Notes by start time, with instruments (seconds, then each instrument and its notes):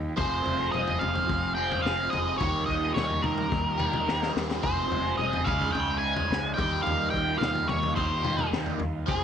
Already playing: fingered electric bass D#2, string machine A#3 D#4 F4 G4
0.17 fingered electric bass F1, overdriven electric guitar F3 C4 F4 G#4, string machine G#3 C4 F4 G#4, lead electric guitar C5, kick, floor tom
0.46 fingered electric bass F1, floor tom
0.72 fingered electric bass F1, lead electric guitar D#5, mid tom
0.88 floor tom
0.99 fingered electric bass F1, lead electric guitar F5, floor tom
1.15 floor tom
1.29 fingered electric bass F1, kick, floor tom
1.55 overdriven electric guitar C4 F4 G#4, lead electric guitar G5
1.60 overdriven electric guitar F3
1.72 floor tom
1.82 fingered electric bass F1, overdriven electric guitar F3 C4 F4, lead electric guitar F5, snare
1.87 overdriven electric guitar G#4
2.10 fingered electric bass F1, lead electric guitar D#5, floor tom
2.38 fingered electric bass D#2, overdriven electric guitar D#3 G3 A#3 D#4, string machine A#3 D#4 G4, lead electric guitar C#5, kick, floor tom
2.42 overdriven electric guitar G4
2.66 fingered electric bass D#2, lead electric guitar D#5, kick
2.94 fingered electric bass D#2, lead electric guitar C#5, snare, mid tom
3.10 floor tom
3.22 fingered electric bass D#2, lead electric guitar A#4, floor tom, mid tom
3.38 floor tom
3.52 fingered electric bass D#2, kick, floor tom
3.78 overdriven electric guitar G3 A#3 D#4 G4, floor tom, mid tom
3.82 overdriven electric guitar D#3
3.93 floor tom, mid tom
4.06 fingered electric bass D#2, overdriven electric guitar D#3 G3 A#3 D#4 G4, snare
4.23 snare
4.36 fingered electric bass D#2, snare
4.51 snare
4.62 fingered electric bass F1, overdriven electric guitar F3 C4 F4 G#4, string machine G#3 C4 G#4, lead electric guitar C5, kick, floor tom
4.91 fingered electric bass F1, floor tom
5.17 fingered electric bass F1, lead electric guitar D#5, mid tom
5.33 floor tom
5.44 fingered electric bass C#2, overdriven electric guitar C#3 G#3 C#4 D#4, string machine G#3 C#4 D#4, lead electric guitar F5, kick, floor tom
5.49 overdriven electric guitar G#4
5.61 floor tom
5.72 fingered electric bass C#2, lead electric guitar G5, floor tom
5.98 lead electric guitar G#5
6.16 floor tom
6.30 fingered electric bass C#2, snare
6.54 overdriven electric guitar D#3 G3, string machine A#3, lead electric guitar G5
6.58 fingered electric bass D#2, string machine G3 F4, overdriven electric guitar A#3 D#4 G4, kick, floor tom
6.83 fingered electric bass D#2, lead electric guitar F5
6.87 floor tom
7.10 fingered electric bass D#2, lead electric guitar G5, kick
7.38 fingered electric bass D#2, lead electric guitar F5, mid tom
7.42 snare
7.55 floor tom
7.68 fingered electric bass D#2, lead electric guitar C#5, floor tom, mid tom
7.83 floor tom
7.96 fingered electric bass D#2, overdriven electric guitar D#3 G3 A#3 D#4 G4, lead electric guitar C5, kick, floor tom
8.23 overdriven electric guitar D#3 G3 A#3 D#4 G4, floor tom, mid tom
8.39 floor tom, mid tom
8.52 fingered electric bass D#2, snare
8.66 floor tom
8.80 fingered electric bass D#2, floor tom
9.06 fingered electric bass F1, overdriven electric guitar F3 C4 F4 G#4, string machine F3 G#3 F4, lead electric guitar G#4, kick, floor tom